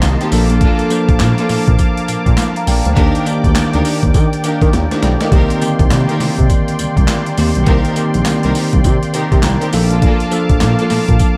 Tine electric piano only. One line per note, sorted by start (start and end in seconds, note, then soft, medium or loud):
0.00 0.33 D#3 medium
0.00 0.32 A#3 medium
0.00 0.34 C4 medium
0.00 0.33 D#4 medium
0.00 0.33 F#4 medium
0.00 0.33 G4 medium
0.32 0.82 F3 loud
0.32 0.82 A#3 medium
0.32 0.82 D4 medium
0.32 0.82 A4 loud
0.90 1.84 F3 medium
0.90 1.84 A#3 medium
0.90 1.85 D4 medium
0.90 1.85 C5 loud
2.57 2.67 F5 medium
2.57 2.67 A#5 medium
2.68 2.85 D5 medium
2.68 2.85 G5 medium
2.86 3.14 C5 medium
2.86 3.14 F5 medium
2.97 3.21 D#3 medium
2.97 3.21 A#3 medium
2.97 3.22 D4 medium
2.97 3.22 G4 medium
3.26 4.20 D#3 medium
3.26 4.20 A#3 medium
3.26 4.20 D4 medium
3.26 4.20 A#4 loud
4.92 5.02 G4 medium
4.92 5.02 C5 medium
5.03 5.20 A4 medium
5.03 5.20 D5 medium
5.21 5.49 A#4 medium
5.21 5.49 D#5 medium
5.32 5.56 D#3 medium
5.32 5.56 A#3 medium
5.32 5.57 C4 medium
5.32 5.57 G4 medium
5.61 5.69 D3 medium
5.61 6.55 A#3 medium
5.61 6.55 C4 medium
5.61 6.56 G4 loud
5.68 6.58 D#3 medium
7.38 7.62 D#3 medium
7.38 7.63 A#3 medium
7.38 7.63 C4 medium
7.38 7.63 G4 medium
7.67 7.92 D#3 medium
7.67 7.92 A#3 medium
7.67 7.92 C4 medium
7.67 7.92 G4 loud
7.96 8.90 D#3 medium
7.96 8.90 A#3 medium
7.96 8.91 C4 medium
7.96 8.91 G4 loud
9.44 9.71 A#5 medium
9.73 10.23 F3 loud
9.73 10.23 A#3 medium
9.73 10.23 D4 medium
9.73 10.23 A4 loud
9.73 10.01 F5 medium
10.32 11.25 F3 medium
10.32 11.26 A#3 medium
10.32 11.26 D4 medium
10.32 11.26 A4 loud